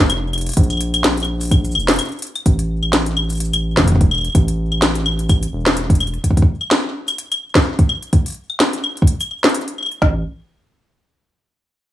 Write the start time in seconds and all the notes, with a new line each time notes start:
0.00 F1
0.10 closed hi-hat, claves
0.33 closed hi-hat, claves
0.38 closed hi-hat
0.41 closed hi-hat
0.47 closed hi-hat
0.49 closed hi-hat
0.52 closed hi-hat
0.53 closed hi-hat
0.57 A#1, kick, closed hi-hat
0.63 closed hi-hat
0.70 closed hi-hat, claves
0.73 claves
0.77 closed hi-hat, claves
0.94 closed hi-hat, claves
1.04 snare, closed hi-hat
1.17 closed hi-hat
1.20 closed hi-hat, claves
1.24 closed hi-hat
1.41 closed hi-hat, cabasa
1.43 closed hi-hat
1.45 closed hi-hat
1.47 closed hi-hat
1.49 kick, closed hi-hat
1.51 closed hi-hat, claves
1.65 closed hi-hat, cabasa
1.72 F1, cabasa, claves
1.80 cabasa
1.88 snare, closed hi-hat
1.91 closed hi-hat
1.94 closed hi-hat
1.96 closed hi-hat
1.99 closed hi-hat, claves
2.02 closed hi-hat
2.05 closed hi-hat
2.09 closed hi-hat
2.12 closed hi-hat
2.19 closed hi-hat
2.22 closed hi-hat
2.27 closed hi-hat
2.35 closed hi-hat, claves
2.46 A1, kick, closed hi-hat
2.59 closed hi-hat
2.83 claves
2.93 snare, closed hi-hat
3.06 closed hi-hat
3.17 claves
3.30 closed hi-hat, cabasa
3.33 closed hi-hat
3.35 closed hi-hat, cabasa
3.38 closed hi-hat
3.40 closed hi-hat
3.45 cabasa
3.53 closed hi-hat, claves
3.77 E1, kick, snare, closed hi-hat
3.80 kick
3.84 kick, closed hi-hat
3.88 kick
3.92 kick
3.96 kick
4.01 kick, closed hi-hat
4.11 claves
4.15 claves
4.18 claves
4.21 closed hi-hat, claves
4.24 claves
4.27 claves
4.30 claves
4.32 A1, kick, closed hi-hat, claves
4.48 closed hi-hat
4.72 claves
4.82 snare, closed hi-hat
4.95 closed hi-hat
5.06 claves
5.19 closed hi-hat
5.29 kick, closed hi-hat, cabasa, claves
5.43 closed hi-hat, cabasa
5.53 E1
5.66 snare, closed hi-hat
5.77 closed hi-hat
5.90 kick, closed hi-hat
5.95 closed hi-hat
6.00 closed hi-hat, claves
6.07 closed hi-hat
6.14 closed hi-hat
6.24 kick, closed hi-hat
6.31 kick
6.37 kick, closed hi-hat
6.42 kick
6.61 claves
6.71 snare, closed hi-hat
7.08 closed hi-hat, cabasa, claves
7.18 closed hi-hat
7.32 closed hi-hat, claves
7.55 kick, snare, closed hi-hat
7.79 kick, closed hi-hat
7.89 claves
8.02 closed hi-hat
8.13 kick, closed hi-hat
8.26 closed hi-hat
8.28 closed hi-hat
8.30 closed hi-hat
8.32 closed hi-hat
8.34 closed hi-hat
8.50 claves
8.60 snare, closed hi-hat
8.73 closed hi-hat
8.84 claves
8.97 closed hi-hat
9.02 kick
9.07 closed hi-hat
9.21 closed hi-hat, cabasa, claves
9.31 claves
9.44 snare, closed hi-hat
9.49 closed hi-hat
9.55 closed hi-hat
9.61 closed hi-hat
9.68 closed hi-hat
9.78 claves
9.83 claves
9.86 claves
9.91 closed hi-hat
10.02 A1, kick, snare